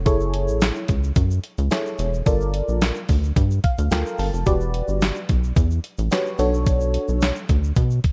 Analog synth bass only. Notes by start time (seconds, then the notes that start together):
0.06 F#1
0.48 A1
0.89 C#2
1.16 F#2
1.58 C#2
1.99 E1
2.26 G1
2.68 A#1
3.09 D2
3.36 G2
3.78 D2
3.91 D2
4.19 G1
4.33 F1
4.47 E1
4.88 G1
5.29 B1
5.56 E2
5.98 A1
6.39 B1
7.09 B1
7.49 D2
7.76 B2